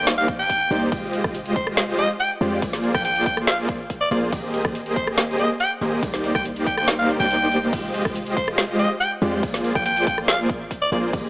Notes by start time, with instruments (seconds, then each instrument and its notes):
Already playing: 808-style bass C2, supersaw synth A#3 D#4 G4 C5 D5
0.07 snare, closed hi-hat
0.18 alto saxophone F5
0.28 kick, closed hi-hat
0.39 alto saxophone G5
0.49 kick, closed hi-hat
0.71 808-style bass C2, supersaw synth A#3 D#4 G4 C5 D5, open hi-hat
0.92 808-style bass F1, supersaw synth G#3 G4, kick, closed hi-hat, crash
1.13 closed hi-hat
1.24 808-style bass F1, kick, cross-stick
1.35 closed hi-hat
1.46 closed hi-hat
1.56 alto saxophone C5, kick, closed hi-hat
1.67 cross-stick
1.77 snare, closed hi-hat
1.98 alto saxophone D#5, closed hi-hat
2.20 alto saxophone G5, closed hi-hat
2.41 808-style bass F2, supersaw synth G#3 F4 G4 C5 D5, open hi-hat
2.62 808-style bass A#1, supersaw synth A#3 F4 G#4 C5 D5, kick, closed hi-hat, crash
2.73 snare
2.84 closed hi-hat
2.95 808-style bass A#1, supersaw synth A#3 F4 C5, alto saxophone G5, kick, cross-stick
3.05 alto saxophone G5, closed hi-hat
3.16 closed hi-hat
3.26 alto saxophone G5, kick, closed hi-hat
3.37 cross-stick
3.47 alto saxophone F5, snare, closed hi-hat
3.69 kick, closed hi-hat
3.90 kick, closed hi-hat
4.01 alto saxophone D5
4.11 808-style bass A#1, supersaw synth A#3 F4 G#4 C5 D5, alto saxophone D5, open hi-hat
4.33 808-style bass G#1, supersaw synth A#3 G4 G#4, kick, closed hi-hat, crash
4.54 closed hi-hat
4.65 808-style bass G#1, supersaw synth A#3, kick, cross-stick
4.75 closed hi-hat
4.86 closed hi-hat
4.96 alto saxophone C5, kick, closed hi-hat
5.07 cross-stick
5.18 snare, closed hi-hat
5.39 alto saxophone D#5, closed hi-hat
5.60 alto saxophone G5, closed hi-hat
5.81 808-style bass G#1, supersaw synth A#3 G4 G#4 C5 D#5, open hi-hat
6.03 808-style bass C2, kick, closed hi-hat, crash
6.14 snare
6.24 closed hi-hat
6.35 808-style bass C2, supersaw synth C5, alto saxophone G5, kick, cross-stick
6.45 closed hi-hat
6.56 closed hi-hat
6.67 alto saxophone G5, kick, closed hi-hat
6.78 alto saxophone G5, cross-stick
6.88 snare, closed hi-hat
6.99 alto saxophone F5
7.09 closed hi-hat
7.20 808-style bass C2, supersaw synth A#3 D#4 G4 C5 D5, alto saxophone G5
7.30 closed hi-hat
7.52 open hi-hat
7.73 808-style bass F1, supersaw synth G#3 F4 G4 C5 D#5, kick, closed hi-hat, crash
7.94 closed hi-hat
8.05 808-style bass F1, supersaw synth F4, kick, cross-stick
8.15 closed hi-hat
8.26 closed hi-hat
8.37 alto saxophone C5, kick, closed hi-hat
8.48 cross-stick
8.58 snare, closed hi-hat
8.79 alto saxophone D#5, closed hi-hat
9.00 alto saxophone G5, closed hi-hat
9.22 808-style bass F2, supersaw synth G#3 F4 G4 C5 D5, open hi-hat
9.43 808-style bass A#1, kick, closed hi-hat, crash
9.54 snare
9.64 closed hi-hat
9.75 808-style bass A#1, supersaw synth A#3 F4 G#4 C5 D5, alto saxophone G5, kick, cross-stick
9.86 alto saxophone G5, closed hi-hat
9.97 closed hi-hat
10.07 alto saxophone G5, kick, closed hi-hat
10.18 cross-stick
10.28 alto saxophone F5, snare, closed hi-hat
10.49 kick, closed hi-hat
10.71 kick, closed hi-hat
10.82 alto saxophone D5
10.92 808-style bass A#1, supersaw synth A#3 F4 G#4 C5 D5, alto saxophone D5, open hi-hat
11.13 808-style bass G#1, supersaw synth A#3 G4 C5, kick, closed hi-hat, crash